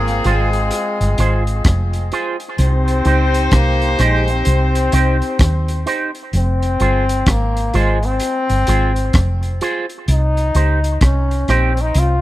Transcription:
Already playing: G#1 A#3 C4 F4 G#4
0.08 closed hi-hat
0.24 G#1 G#3 F4 G#4 C5, closed hi-hat
0.53 closed hi-hat
0.71 closed hi-hat
1.01 G1, closed hi-hat
1.18 G#1 F4 G#4 C5, closed hi-hat
1.47 closed hi-hat
1.65 F1, kick, cross-stick, closed hi-hat
1.93 closed hi-hat
2.12 F4 G#4 C5, closed hi-hat
2.40 closed hi-hat
2.58 C2 C4 D#4 G4 C5, closed hi-hat
2.88 closed hi-hat
3.05 C#2 D#4 G4 C5, closed hi-hat
3.34 closed hi-hat
3.51 C2 A#3, kick, cross-stick, closed hi-hat
3.82 closed hi-hat
3.99 A#1 G#3 D#4 G4 C5, cross-stick, closed hi-hat
4.28 C4, closed hi-hat
4.45 C2, closed hi-hat
4.75 closed hi-hat
4.92 C2 D#4 G4 C5, closed hi-hat
5.22 closed hi-hat
5.39 D#2, kick, cross-stick, closed hi-hat
5.68 closed hi-hat
5.86 D#4 G4 C5, closed hi-hat
6.15 closed hi-hat
6.33 F1 C4, closed hi-hat
6.62 closed hi-hat
6.80 G1 F4 G#4 C5, closed hi-hat
7.09 closed hi-hat
7.26 G#1 A#3, kick, cross-stick, closed hi-hat
7.57 closed hi-hat
7.74 G#1 G#3 F4 G#4 C5, closed hi-hat
8.03 C4, closed hi-hat
8.20 closed hi-hat
8.49 G1, closed hi-hat
8.67 G#1 F4 G#4 C5, closed hi-hat
8.96 closed hi-hat
9.13 F1, kick, cross-stick, closed hi-hat
9.43 closed hi-hat
9.61 F4 G#4 C5, closed hi-hat
9.89 closed hi-hat
10.08 C2 D#4, closed hi-hat
10.37 closed hi-hat
10.55 C#2 D#4 G4 C5, closed hi-hat
10.84 closed hi-hat
11.01 C2 C#4, kick, cross-stick, closed hi-hat
11.31 closed hi-hat
11.48 A#1 C4 D#4 G4 C5, cross-stick, closed hi-hat
11.77 closed hi-hat
11.81 D#4
11.94 C2, closed hi-hat
11.99 F4

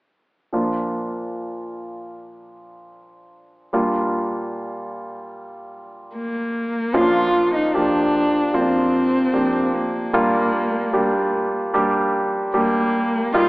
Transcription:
0.53 A#2 F3 A#3 D4 F4
3.73 A#2 G3 A#3 D4 F4
6.16 A#3
6.94 A#2 F3 A#3 C#4 F4
7.01 D4
7.54 D#4
7.67 D#4
7.73 F3 A#3 D4 G4
8.53 F3 A#3 C4 F4
8.61 D4
9.33 F3 A#3 D4 G4
9.75 A#3
10.13 A#2 G3 A#3 D4 F4
10.93 G3 A#3 D4 G4
11.74 G3 A#3 D4 G4
12.54 G3 A#3 D4 G4
13.34 A#2 G3 A#3 D#4 F4

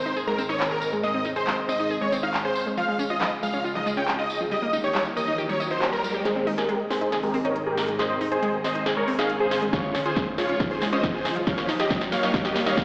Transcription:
Already playing: G#2 D#3 C4 G#4 C5 D#5
0.06 D#4, tambourine
0.17 G#4, tambourine
0.27 G#3 A#4, clap
0.38 C4, tambourine
0.49 D#4 C#5, tambourine
0.60 clap, tambourine
0.71 G#4 A#4
0.82 tambourine
0.93 G#3, tambourine
1.03 G#3 D#5, tambourine
1.14 C4
1.25 D#4, tambourine
1.36 G#4 C5, tambourine
1.47 G#3, clap, tambourine
1.69 C4 D#5, tambourine
1.80 D#4, tambourine
1.90 G#4, tambourine
2.01 G#3 C#5
2.12 C4, tambourine
2.23 D#4 F5, tambourine
2.34 clap, tambourine
2.45 G#4 C5
2.55 tambourine
2.66 G#3, tambourine
2.77 C#2 C#3 F3 G#3 F4 F5, tambourine, riser
2.88 G#3
2.99 C#4, tambourine
3.10 F4 D#5, tambourine
3.20 F3, clap, tambourine
3.43 G#3 F5, tambourine
3.54 C#4, tambourine
3.64 F4, tambourine
3.75 F3 D#5, clap
3.86 G#3, tambourine
3.97 C#4 G5
4.08 clap, tambourine
4.19 F4 D#5
4.30 tambourine
4.40 F3, tambourine
4.51 D#2 D#3 G3 A#3 G4 A#4 D#5, tambourine
4.62 A#3
4.73 D#4, tambourine
4.84 G4 C#5, tambourine
4.94 G3, clap, tambourine
5.05 tambourine
5.17 A#3 D#5, tambourine
5.27 D#4, tambourine
5.38 G4, tambourine
5.49 G3 C#5, tambourine
5.60 D#5, tambourine
5.71 D#4 C5
5.81 clap, tambourine
5.93 A#4, tambourine
6.04 tambourine
6.14 G4, tambourine
6.25 G#2 D#3 G#3 C4 G#4 C5 D#5, snare, closed hi-hat, riser
6.36 C4
6.47 D#4, open hi-hat
6.58 G4 G#4 A#4, snare, closed hi-hat
6.69 G#3, closed hi-hat
6.90 C4 G#4 C5, snare, open hi-hat
7.01 D#4, closed hi-hat
7.12 G#4, snare, closed hi-hat, mid tom
7.23 G#3 G4 A#4, open hi-hat
7.34 C4, open hi-hat, mid tom
7.45 D#4 A#4 C#5, closed hi-hat, mid tom
7.56 closed hi-hat
7.66 G4 G#4 A#4
7.77 snare, open hi-hat
7.88 G#3, closed hi-hat
7.99 G#3 C5 D#5, snare, closed hi-hat
8.10 C4
8.21 D#4, open hi-hat
8.32 G#4 C5, closed hi-hat
8.43 G#3, closed hi-hat
8.54 mid tom
8.64 C4 C5 D#5, snare, open hi-hat
8.75 D#4, closed hi-hat
8.86 G#4, snare, closed hi-hat
8.97 G#3 A#4 C#5
9.08 C4, open hi-hat
9.18 D#4 G#4 F5, snare, closed hi-hat
9.30 closed hi-hat
9.40 G#4 C5
9.51 snare, open hi-hat
9.62 G#3, closed hi-hat, mid tom
9.73 C#2 C#3 F3 G#3 F4 C#5, kick, snare, closed hi-hat
9.84 G#3
9.95 C#4, snare, open hi-hat
10.05 F4 G#4 C5, closed hi-hat
10.16 F3, kick, snare, closed hi-hat
10.38 G#3 F4 C#5, snare, open hi-hat
10.49 C#4, closed hi-hat
10.60 F4, kick, snare, closed hi-hat, mid tom
10.71 F3 G#4 C5, open hi-hat
10.82 G#3, snare, open hi-hat, mid tom
10.93 C#4 C5 D#5, closed hi-hat, mid tom
11.03 kick, snare, closed hi-hat
11.14 F4 G#4 C5
11.25 snare, open hi-hat
11.36 F3, closed hi-hat
11.47 D#2 D#3 G3 A#3 G4 A#4 C#5 F5, kick, snare, closed hi-hat
11.58 A#3, snare
11.69 D#4, snare, open hi-hat
11.79 G4 D#5, snare, closed hi-hat
11.90 G3, kick, snare, closed hi-hat
12.01 snare, mid tom
12.12 A#3 C#5 F5, snare, open hi-hat
12.23 D#4, snare, closed hi-hat
12.34 G4, kick, snare, closed hi-hat
12.45 G3 G4 D#5, snare
12.56 A#3, snare, open hi-hat
12.66 D#4 C#5 F5, snare, closed hi-hat
12.77 kick, snare, closed hi-hat

